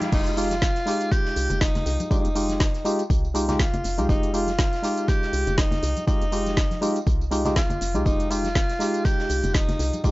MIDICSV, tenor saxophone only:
0, 0, Header, 1, 2, 480
1, 0, Start_track
1, 0, Key_signature, -4, "minor"
1, 0, Tempo, 495868
1, 121, Time_signature, 4, 2, 24, 8
1, 9787, End_track
2, 0, Start_track
2, 0, Title_t, "Tenor saxophone"
2, 0, Program_c, 0, 66
2, 121, Note_on_c, 0, 63, 99
2, 362, Note_on_c, 0, 65, 109
2, 376, Note_off_c, 0, 63, 0
2, 1081, Note_on_c, 0, 67, 118
2, 1096, Note_off_c, 0, 65, 0
2, 1562, Note_on_c, 0, 63, 99
2, 1576, Note_off_c, 0, 67, 0
2, 2036, Note_off_c, 0, 63, 0
2, 2042, Note_on_c, 0, 63, 99
2, 2962, Note_off_c, 0, 63, 0
2, 3480, Note_on_c, 0, 65, 97
2, 3927, Note_off_c, 0, 65, 0
2, 3961, Note_on_c, 0, 63, 98
2, 4201, Note_on_c, 0, 65, 112
2, 4215, Note_off_c, 0, 63, 0
2, 4921, Note_on_c, 0, 67, 116
2, 4936, Note_off_c, 0, 65, 0
2, 5401, Note_on_c, 0, 63, 102
2, 5416, Note_off_c, 0, 67, 0
2, 5875, Note_off_c, 0, 63, 0
2, 5881, Note_on_c, 0, 63, 100
2, 6802, Note_off_c, 0, 63, 0
2, 7321, Note_on_c, 0, 65, 99
2, 7800, Note_on_c, 0, 63, 103
2, 7814, Note_off_c, 0, 65, 0
2, 8040, Note_on_c, 0, 65, 108
2, 8054, Note_off_c, 0, 63, 0
2, 8759, Note_on_c, 0, 67, 121
2, 8773, Note_off_c, 0, 65, 0
2, 9239, Note_on_c, 0, 63, 99
2, 9254, Note_off_c, 0, 67, 0
2, 9713, Note_off_c, 0, 63, 0
2, 9719, Note_on_c, 0, 63, 102
2, 9787, Note_off_c, 0, 63, 0
2, 9787, End_track
0, 0, End_of_file